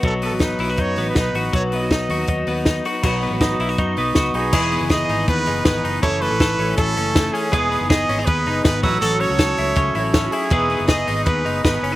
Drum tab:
CC |--------|--------|x-------|x-------|
RD |--------|--------|--------|--x-x-x-|
HH |xoxoxoxo|xoxoxoxo|-oxoxoxo|-opopopo|
SD |--o---o-|--o---o-|--o---o-|--o---o-|
BD |o-o-o-o-|o-o-o-o-|o-o-o-o-|o-o-o-o-|

CC |--------|--------|--------|--------|
RD |x-x-x-x-|x-x-x-x-|x-x-x-x-|x-x-x-x-|
HH |popopopo|popopopo|popopopo|popopopo|
SD |--o---o-|--o---o-|--o---o-|--o---o-|
BD |o-o-o-o-|o-o-o-oo|--o-o-o-|o-o-o-o-|